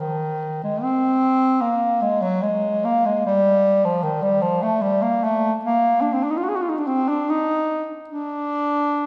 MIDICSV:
0, 0, Header, 1, 2, 480
1, 0, Start_track
1, 0, Tempo, 819672
1, 481, Time_signature, 3, 2, 24, 8
1, 1912, Tempo, 776197
1, 2872, Tempo, 823045
1, 5349, End_track
2, 0, Start_track
2, 0, Title_t, "Bass clarinet"
2, 0, Program_c, 0, 71
2, 0, Note_on_c, 0, 51, 66
2, 364, Note_off_c, 0, 51, 0
2, 372, Note_on_c, 0, 56, 65
2, 486, Note_on_c, 0, 60, 83
2, 495, Note_off_c, 0, 56, 0
2, 943, Note_on_c, 0, 58, 63
2, 951, Note_off_c, 0, 60, 0
2, 1181, Note_on_c, 0, 56, 66
2, 1190, Note_off_c, 0, 58, 0
2, 1297, Note_on_c, 0, 54, 65
2, 1306, Note_off_c, 0, 56, 0
2, 1420, Note_on_c, 0, 56, 62
2, 1428, Note_off_c, 0, 54, 0
2, 1666, Note_on_c, 0, 58, 72
2, 1674, Note_off_c, 0, 56, 0
2, 1789, Note_on_c, 0, 56, 61
2, 1798, Note_off_c, 0, 58, 0
2, 1905, Note_off_c, 0, 56, 0
2, 1909, Note_on_c, 0, 55, 75
2, 2273, Note_on_c, 0, 53, 65
2, 2282, Note_off_c, 0, 55, 0
2, 2383, Note_on_c, 0, 51, 66
2, 2392, Note_off_c, 0, 53, 0
2, 2503, Note_on_c, 0, 55, 68
2, 2512, Note_off_c, 0, 51, 0
2, 2621, Note_on_c, 0, 53, 66
2, 2631, Note_off_c, 0, 55, 0
2, 2751, Note_on_c, 0, 57, 63
2, 2760, Note_off_c, 0, 53, 0
2, 2870, Note_on_c, 0, 55, 70
2, 2879, Note_off_c, 0, 57, 0
2, 2989, Note_on_c, 0, 58, 66
2, 2998, Note_off_c, 0, 55, 0
2, 3118, Note_on_c, 0, 57, 76
2, 3127, Note_off_c, 0, 58, 0
2, 3286, Note_off_c, 0, 57, 0
2, 3357, Note_on_c, 0, 58, 70
2, 3569, Note_on_c, 0, 62, 54
2, 3578, Note_off_c, 0, 58, 0
2, 3639, Note_on_c, 0, 60, 60
2, 3648, Note_off_c, 0, 62, 0
2, 3696, Note_on_c, 0, 62, 58
2, 3705, Note_off_c, 0, 60, 0
2, 3738, Note_on_c, 0, 63, 55
2, 3746, Note_off_c, 0, 62, 0
2, 3780, Note_on_c, 0, 65, 55
2, 3788, Note_off_c, 0, 63, 0
2, 3814, Note_on_c, 0, 66, 52
2, 3822, Note_off_c, 0, 65, 0
2, 3846, Note_on_c, 0, 68, 57
2, 3854, Note_off_c, 0, 66, 0
2, 3885, Note_on_c, 0, 66, 59
2, 3894, Note_off_c, 0, 68, 0
2, 3922, Note_on_c, 0, 65, 57
2, 3930, Note_off_c, 0, 66, 0
2, 3964, Note_on_c, 0, 63, 50
2, 3973, Note_off_c, 0, 65, 0
2, 4015, Note_on_c, 0, 62, 55
2, 4024, Note_off_c, 0, 63, 0
2, 4069, Note_on_c, 0, 60, 68
2, 4078, Note_off_c, 0, 62, 0
2, 4194, Note_on_c, 0, 62, 62
2, 4202, Note_off_c, 0, 60, 0
2, 4317, Note_on_c, 0, 63, 73
2, 4325, Note_off_c, 0, 62, 0
2, 4637, Note_off_c, 0, 63, 0
2, 4782, Note_on_c, 0, 62, 84
2, 5349, Note_off_c, 0, 62, 0
2, 5349, End_track
0, 0, End_of_file